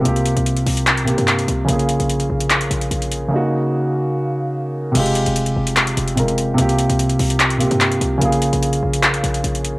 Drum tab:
CC |----------------|----------------|----------------|x---------------|
HH |xxxxxxoxxxxxxxx-|xxxxxx-xxxxxxxx-|----------------|xxxxxx-xxxxxxxx-|
CP |--------x---x---|--------x-------|----------------|--------x-------|

CC |----------------|----------------|
HH |xxxxxxoxxxxxxxx-|xxxxxx-xxxxxxxx-|
CP |--------x---x---|--------x-------|